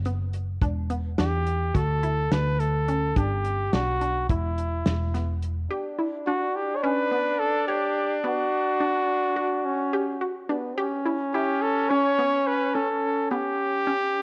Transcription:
0.00 0.58 F#1 medium
0.05 0.52 B3 medium
0.05 closed hi-hat medium
0.34 closed hi-hat medium
0.62 1.14 E1 medium
0.62 0.85 D4 medium
0.62 kick loud
0.62 closed hi-hat medium
0.90 1.13 B3 medium
0.90 closed hi-hat medium
1.18 1.71 E2 medium
1.18 1.65 D4 medium
1.18 1.77 G4 medium
1.18 snare medium
1.18 closed hi-hat medium
1.46 closed hi-hat medium
1.74 2.27 D2 medium
1.74 1.98 F#4 medium
1.74 2.34 A4 medium
1.74 kick medium
1.74 snare soft
1.74 closed hi-hat medium
2.03 2.26 E4 medium
2.03 closed hi-hat medium
2.31 3.12 D2 medium
2.31 2.78 D4 medium
2.31 2.61 B4 medium
2.31 snare medium
2.31 closed hi-hat medium
2.60 3.18 A4 medium
2.60 closed hi-hat medium
2.88 3.11 C#4 medium
2.88 closed hi-hat medium
3.16 3.69 G1 medium
3.16 3.63 D4 medium
3.16 3.75 G4 medium
3.16 kick medium
3.16 closed hi-hat medium
3.45 closed hi-hat medium
3.73 4.25 B1 medium
3.73 3.96 D4 medium
3.73 4.29 F#4 medium
3.73 snare medium
3.73 closed hi-hat medium
4.01 4.24 D4 medium
4.01 closed hi-hat soft
4.29 4.82 E1 medium
4.29 5.38 E4 medium
4.29 4.76 E4 medium
4.29 kick medium
4.29 closed hi-hat medium
4.58 closed hi-hat medium
4.86 5.66 E1 medium
4.86 snare loud
4.86 closed hi-hat medium
5.14 5.60 B3 medium
5.14 snare soft
5.14 closed hi-hat medium
5.43 closed hi-hat medium
5.71 9.66 D4 loud
5.71 5.94 G4 medium
5.99 6.22 E4 medium
6.26 6.73 D4 medium
6.26 6.57 F#4 medium
6.55 6.78 G4 medium
6.76 6.84 C#5 medium
6.83 7.06 C#4 medium
6.83 7.41 B4 loud
7.11 7.58 B3 medium
7.39 7.67 A4 medium
7.67 8.20 G4 medium
7.67 8.14 C#5 medium
8.24 8.70 B3 medium
8.24 10.46 F#4 medium
8.81 9.27 D4 medium
9.36 9.83 F#4 medium
9.65 10.22 C#4 medium
9.93 10.16 G4 medium
10.21 10.45 F#4 medium
10.49 10.79 B3 medium
10.49 10.73 D4 medium
10.77 14.22 C#4 loud
10.77 11.01 G4 medium
11.05 11.29 E4 medium
11.34 11.80 E4 medium
11.34 11.63 G4 medium
11.62 11.91 A4 medium
11.89 12.14 C#4 medium
11.89 12.48 C#5 loud
12.19 12.65 B3 medium
12.47 12.76 B4 medium
12.74 13.21 C#4 medium
12.74 13.30 A4 medium
13.31 13.78 B3 medium
13.31 14.22 G4 medium
13.87 14.22 C#4 medium

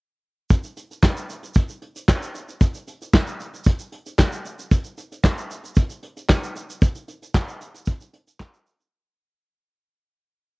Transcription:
0.50 kick loud
0.50 closed hi-hat medium
0.50 shaker medium
0.64 closed hi-hat medium
0.64 shaker soft
0.77 closed hi-hat medium
0.77 shaker soft
0.91 closed hi-hat medium
0.91 shaker soft
1.03 kick loud
1.03 snare loud
1.03 clap medium
1.03 shaker medium
1.17 closed hi-hat soft
1.17 shaker medium
1.30 closed hi-hat medium
1.30 shaker medium
1.43 closed hi-hat soft
1.43 shaker medium
1.54 kick loud
1.54 closed hi-hat medium
1.54 shaker medium
1.69 closed hi-hat soft
1.69 shaker medium
1.82 closed hi-hat medium
1.96 closed hi-hat medium
1.96 shaker medium
2.08 kick loud
2.08 snare loud
2.08 clap medium
2.08 shaker medium
2.22 closed hi-hat medium
2.22 shaker medium
2.35 closed hi-hat medium
2.35 shaker medium
2.48 closed hi-hat soft
2.48 shaker medium
2.61 kick loud
2.61 closed hi-hat medium
2.61 shaker medium
2.74 closed hi-hat medium
2.74 shaker soft
2.87 closed hi-hat medium
2.87 shaker soft
3.02 closed hi-hat medium
3.02 shaker soft
3.14 kick loud
3.14 snare loud
3.14 clap medium
3.14 shaker medium
3.27 closed hi-hat soft
3.27 shaker soft
3.40 closed hi-hat medium
3.40 shaker medium
3.54 closed hi-hat soft
3.54 shaker medium
3.64 kick loud
3.64 closed hi-hat medium
3.64 shaker medium
3.79 closed hi-hat soft
3.79 shaker medium
3.92 closed hi-hat medium
4.06 closed hi-hat medium
4.06 shaker soft
4.19 kick loud
4.19 snare loud
4.19 clap medium
4.19 shaker medium
4.32 closed hi-hat medium
4.32 shaker soft
4.45 closed hi-hat medium
4.45 shaker medium
4.59 closed hi-hat soft
4.59 shaker medium
4.71 kick loud
4.71 closed hi-hat medium
4.71 shaker medium
4.84 closed hi-hat medium
4.84 shaker soft
4.98 closed hi-hat medium
4.98 shaker soft
5.12 closed hi-hat medium
5.12 shaker soft
5.24 kick loud
5.24 snare loud
5.24 clap medium
5.24 shaker medium
5.38 closed hi-hat medium
5.38 shaker soft
5.50 closed hi-hat medium
5.50 shaker medium
5.64 closed hi-hat medium
5.64 shaker medium
5.75 kick loud
5.75 closed hi-hat medium
5.75 shaker medium
5.90 closed hi-hat soft
5.90 shaker soft
6.03 closed hi-hat medium
6.17 closed hi-hat medium
6.17 shaker soft
6.29 kick medium
6.29 snare loud
6.29 clap medium
6.29 shaker medium
6.43 closed hi-hat medium
6.43 shaker soft
6.55 closed hi-hat medium
6.55 shaker medium
6.69 closed hi-hat soft
6.69 shaker medium
6.82 kick loud
6.82 closed hi-hat medium
6.82 shaker medium
6.95 closed hi-hat medium
6.95 shaker soft
7.08 closed hi-hat medium
7.08 shaker soft
7.22 closed hi-hat medium
7.22 shaker soft
7.34 kick loud
7.34 snare loud
7.34 clap medium
7.34 shaker medium
7.48 closed hi-hat soft
7.48 shaker soft
7.61 closed hi-hat medium
7.61 shaker medium
7.74 closed hi-hat medium
7.74 shaker medium
7.86 kick medium
7.86 closed hi-hat medium
7.86 shaker medium
8.01 closed hi-hat soft
8.01 shaker medium
8.13 closed hi-hat medium
8.27 closed hi-hat medium
8.27 shaker soft
8.40 kick loud
8.40 snare loud
8.40 clap medium
8.40 shaker medium
8.53 closed hi-hat medium
8.53 shaker soft
8.66 open hi-hat medium
8.66 shaker medium
8.80 closed hi-hat soft
8.80 shaker medium

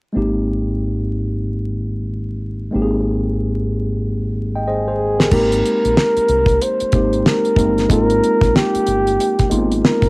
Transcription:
0.13 2.70 G#1 medium
0.13 2.68 G#3 medium
0.13 2.68 A#3 soft
0.13 2.69 C4 medium
0.13 2.70 D#4 medium
0.17 2.70 G4 medium
2.71 5.28 G#1 medium
2.71 5.26 G#3 medium
2.71 5.27 A#3 medium
2.71 5.27 C4 medium
2.71 5.28 D#4 medium
2.76 2.82 G4 medium
2.82 4.36 G#4 medium
4.56 4.66 D#5 soft
4.56 4.67 G5 soft
4.68 5.34 G#4 medium
4.68 4.86 C5 medium
4.68 4.86 D#5 medium
4.88 5.18 G#4 medium
4.88 5.18 C5 medium
5.19 5.33 G4 soft
5.19 5.49 A#4 medium
5.19 snare medium
5.31 5.61 G#1 medium
5.31 6.48 G#3 medium
5.31 6.48 A#3 medium
5.31 6.48 C4 medium
5.31 6.48 D#4 medium
5.31 6.49 G4 medium
5.31 6.64 A#4 medium
5.31 kick loud
5.31 crash medium
5.52 closed hi-hat soft
5.66 closed hi-hat medium
5.85 5.96 A#1 medium
5.85 closed hi-hat soft
5.97 snare loud
6.17 muted fingered electric bass stroke soft
6.17 closed hi-hat soft
6.28 6.58 C2 medium
6.28 closed hi-hat soft
6.46 kick medium
6.46 closed hi-hat soft
6.62 7.29 C5 medium
6.62 closed hi-hat medium
6.80 muted fingered electric bass stroke soft
6.80 closed hi-hat soft
6.92 7.22 G#1 medium
6.92 7.51 G#3 medium
6.92 7.51 A#3 medium
6.92 7.51 C4 medium
6.92 7.52 D#4 medium
6.92 7.52 G4 medium
6.92 kick medium
6.92 closed hi-hat medium
7.13 closed hi-hat soft
7.26 7.90 A#4 medium
7.26 snare medium
7.45 closed hi-hat soft
7.56 7.86 G1 medium
7.56 7.86 G#3 medium
7.56 7.86 A#3 medium
7.56 7.86 C4 medium
7.56 7.87 D#4 medium
7.56 7.87 A#4 medium
7.56 kick medium
7.56 closed hi-hat medium
7.78 snare soft
7.78 closed hi-hat soft
7.89 8.19 G#1 loud
7.89 9.05 G#3 medium
7.89 9.06 A#3 medium
7.89 9.06 C4 medium
7.89 9.06 D#4 medium
7.89 9.06 F4 medium
7.89 8.57 A#4 medium
7.89 kick loud
7.89 closed hi-hat medium
8.10 closed hi-hat soft
8.24 closed hi-hat medium
8.41 8.53 A#1 medium
8.41 kick medium
8.41 closed hi-hat soft
8.56 9.58 G4 medium
8.56 snare loud
8.75 muted fingered electric bass stroke soft
8.75 closed hi-hat soft
8.87 9.16 G1 medium
8.87 closed hi-hat medium
9.07 closed hi-hat soft
9.20 closed hi-hat medium
9.39 muted fingered electric bass stroke soft
9.39 kick medium
9.39 closed hi-hat soft
9.50 9.80 G#1 medium
9.50 10.08 G#3 medium
9.50 10.09 A#3 medium
9.50 9.59 B3 medium
9.50 10.09 D#4 medium
9.50 10.09 F4 medium
9.50 closed hi-hat medium
9.57 10.09 C4 medium
9.72 closed hi-hat soft
9.85 10.09 A#4 medium
9.85 snare loud
10.02 10.09 G1 medium
10.02 kick medium
10.02 closed hi-hat soft

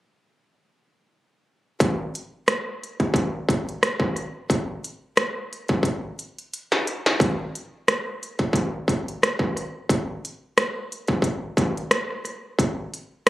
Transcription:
1.80 kick medium
1.80 closed hi-hat medium
2.15 closed hi-hat medium
2.48 cross-stick medium
2.48 closed hi-hat medium
2.83 closed hi-hat medium
3.00 kick medium
3.00 closed hi-hat soft
3.14 kick medium
3.14 closed hi-hat medium
3.49 kick medium
3.49 closed hi-hat soft
3.69 closed hi-hat soft
3.83 cross-stick medium
3.83 closed hi-hat medium
4.00 kick medium
4.00 cross-stick soft
4.16 cross-stick soft
4.16 closed hi-hat medium
4.50 kick medium
4.50 closed hi-hat medium
4.84 closed hi-hat medium
5.17 cross-stick loud
5.17 closed hi-hat medium
5.53 closed hi-hat medium
5.68 kick medium
5.68 closed hi-hat soft
5.83 kick medium
5.83 closed hi-hat medium
6.19 closed hi-hat medium
6.38 closed hi-hat soft
6.54 closed hi-hat medium
6.72 snare medium
6.87 closed hi-hat medium
7.06 snare medium
7.20 kick loud
7.20 closed hi-hat medium
7.55 closed hi-hat medium
7.88 cross-stick loud
7.88 closed hi-hat medium
8.23 closed hi-hat medium
8.39 kick medium
8.39 closed hi-hat soft
8.53 kick medium
8.53 closed hi-hat medium
8.88 kick medium
8.88 closed hi-hat medium
9.08 closed hi-hat soft
9.23 cross-stick medium
9.23 closed hi-hat medium
9.39 kick medium
9.39 cross-stick soft
9.56 cross-stick soft
9.56 closed hi-hat medium
9.89 kick medium
9.89 closed hi-hat medium
10.25 closed hi-hat medium
10.58 cross-stick loud
10.58 closed hi-hat medium
10.92 closed hi-hat medium
11.08 kick medium
11.08 closed hi-hat soft
11.22 kick medium
11.22 closed hi-hat medium
11.57 kick medium
11.57 closed hi-hat medium
11.77 closed hi-hat soft
11.91 cross-stick medium
11.91 closed hi-hat medium
12.11 cross-stick soft
12.25 cross-stick soft
12.25 closed hi-hat medium
12.59 kick medium
12.59 closed hi-hat medium
12.94 closed hi-hat medium

